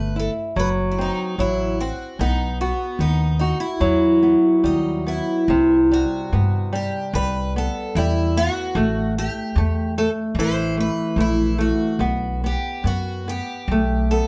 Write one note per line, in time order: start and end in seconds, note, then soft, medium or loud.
0.00 0.27 G1 medium
0.00 0.15 A3 soft
0.00 0.18 B4 medium
0.16 0.55 E4 soft
0.16 0.30 A4 medium
0.56 1.09 F#1 medium
0.56 1.38 F#3 medium
0.56 0.68 B4 medium
0.92 0.97 E4 medium
0.98 1.37 C4 soft
0.98 1.41 D#4 medium
1.38 1.90 A1 medium
1.38 1.77 F#3 soft
1.38 1.80 E4 medium
1.81 2.18 C4 soft
1.81 2.20 F#4 medium
2.19 2.71 B1 medium
2.19 2.99 B3 medium
2.19 2.60 D#4 medium
2.61 3.00 B3 medium
2.61 2.98 F#4 soft
2.99 3.51 D#2 medium
2.99 3.38 B3 medium
2.99 3.38 D#4 medium
3.39 3.60 D#4 medium
3.39 3.79 F#4 soft
3.60 5.01 E4 medium
3.80 4.34 E2 medium
3.80 5.44 F#3 medium
4.23 4.62 B3 soft
4.64 5.18 D#2 medium
4.64 5.04 G3 soft
4.64 5.07 D#4 medium
5.07 5.47 B3 soft
5.07 5.93 E4 medium
5.48 6.02 C2 medium
5.48 7.11 C3 medium
5.91 6.31 G3 soft
5.91 6.71 F#4 medium
6.33 6.86 G2 medium
6.33 6.72 B3 medium
6.73 7.13 G3 soft
6.73 7.16 G4 medium
7.13 7.66 C2 medium
7.13 7.97 G3 medium
7.13 7.53 B4 medium
7.56 7.95 B3 soft
7.56 7.96 A4 medium
7.95 8.47 E2 medium
7.95 8.36 G3 medium
7.95 8.37 E4 medium
8.37 8.75 B3 soft
8.37 9.13 F#4 medium
8.75 9.27 A1 loud
8.75 9.17 A3 medium
9.18 9.55 A3 medium
9.18 9.92 G4 medium
9.55 10.07 E2 medium
9.55 9.95 A3 medium
9.98 10.35 A3 soft
9.98 10.09 A4 medium
10.35 10.87 A1 medium
10.39 11.97 E3 medium
10.39 10.75 C5 medium
10.77 11.16 A3 soft
10.77 11.20 B4 medium
11.16 11.70 A#1 medium
11.16 11.57 A3 soft
11.21 11.57 E4 medium
11.58 11.99 A3 soft
11.58 12.46 F#4 medium
11.99 12.54 B1 medium
11.99 12.43 B3 medium
12.44 12.84 B3 soft
12.44 12.87 G4 medium
12.84 13.38 F#2 medium
12.84 13.26 B3 soft
12.84 13.29 F#4 medium
13.28 13.67 B3 soft
13.28 14.11 G4 medium
13.68 14.20 B1 medium
13.68 14.27 A3 medium
14.11 14.27 B3 soft
14.11 14.27 A4 medium